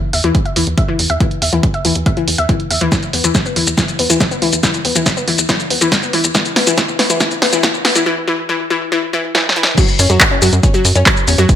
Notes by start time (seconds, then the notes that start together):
0.13 E2 E5, open hi-hat
0.24 E2 E3, closed hi-hat
0.35 kick, closed hi-hat
0.46 E5, closed hi-hat
0.56 E2 E3, open hi-hat
0.67 E2, closed hi-hat
0.78 E5, kick, closed hi-hat
0.88 E3
0.99 E2, open hi-hat
1.10 E2 E5, closed hi-hat
1.20 E3, kick, closed hi-hat
1.31 closed hi-hat
1.42 E2 E5, open hi-hat
1.53 E2 E3, closed hi-hat
1.63 kick, closed hi-hat
1.74 E5, closed hi-hat
1.85 E2 E3, open hi-hat
1.95 E2, closed hi-hat
2.06 E5, kick, closed hi-hat
2.17 E3, closed hi-hat
2.28 E2, open hi-hat
2.38 E2 E5, closed hi-hat
2.49 E3, kick, closed hi-hat
2.60 closed hi-hat
2.70 E2 E5, open hi-hat
2.81 E2 E3, closed hi-hat
2.92 E3, kick, snare, closed hi-hat, shaker
3.03 closed hi-hat, shaker
3.13 E2 B3, open hi-hat
3.24 E2 E3, closed hi-hat, shaker
3.35 kick, snare, closed hi-hat, shaker
3.45 B3, shaker
3.56 E2 E3, open hi-hat
3.67 E2, closed hi-hat, shaker
3.78 E3, kick, snare, closed hi-hat, shaker
3.88 closed hi-hat, shaker
3.99 E2 B3, open hi-hat
4.10 E2 E3, closed hi-hat, shaker
4.20 kick, snare, closed hi-hat, shaker
4.31 B3, shaker
4.42 D2 E3, open hi-hat
4.53 E2, closed hi-hat, shaker
4.63 E3, kick, snare, closed hi-hat, shaker
4.74 closed hi-hat, shaker
4.85 E2 B3, open hi-hat
4.95 E2 E3, closed hi-hat, shaker
5.06 kick, snare, closed hi-hat, shaker
5.17 B3, shaker
5.28 E2 E3, open hi-hat
5.38 E2, closed hi-hat, shaker
5.49 E3, kick, snare, closed hi-hat, shaker
5.60 closed hi-hat, shaker
5.70 E2 B3, open hi-hat
5.81 E2 E3, closed hi-hat, shaker
5.92 kick, snare, closed hi-hat, shaker
6.03 B3, shaker
6.13 D2 E3, open hi-hat
6.24 E2, closed hi-hat, shaker
6.35 E3, kick, snare, closed hi-hat, shaker
6.45 closed hi-hat, shaker
6.56 D2 B3, snare, open hi-hat
6.67 D2 E3, closed hi-hat, shaker
6.78 E3, kick, snare, closed hi-hat, shaker
6.88 shaker
6.99 D2 B3, snare, open hi-hat
7.10 D2 E3, closed hi-hat, shaker
7.20 E3, kick, snare, closed hi-hat, shaker
7.31 closed hi-hat, shaker
7.42 D2 B3, snare, open hi-hat
7.53 D2 E3, closed hi-hat, shaker
7.63 E3, kick, snare, closed hi-hat, shaker
7.74 shaker
7.85 D2 B3, snare, open hi-hat
7.95 D2 E3, closed hi-hat, shaker
8.06 E3
8.28 E3
8.49 E3
8.70 E3
8.92 E3
9.13 E3
9.35 E3, snare
9.49 snare
9.56 E3
9.63 snare
9.78 F#3, kick, closed hi-hat, crash, shaker
9.88 closed hi-hat, shaker
9.99 F#2 C#4, open hi-hat, shaker
10.10 F#2 F#3, closed hi-hat, shaker
10.20 kick, clap, closed hi-hat, shaker
10.31 C#4
10.42 F#2 F#3, open hi-hat, shaker
10.53 F#2, closed hi-hat, shaker
10.63 C#4, kick, closed hi-hat, shaker
10.74 F#3, closed hi-hat, shaker
10.85 F#2, open hi-hat, shaker
10.95 F#2 C#4, closed hi-hat, shaker
11.06 F#3, kick, clap, closed hi-hat, shaker
11.17 shaker
11.28 E2 C#4, open hi-hat, shaker
11.38 F#2 F#3, closed hi-hat, shaker
11.49 kick, closed hi-hat, shaker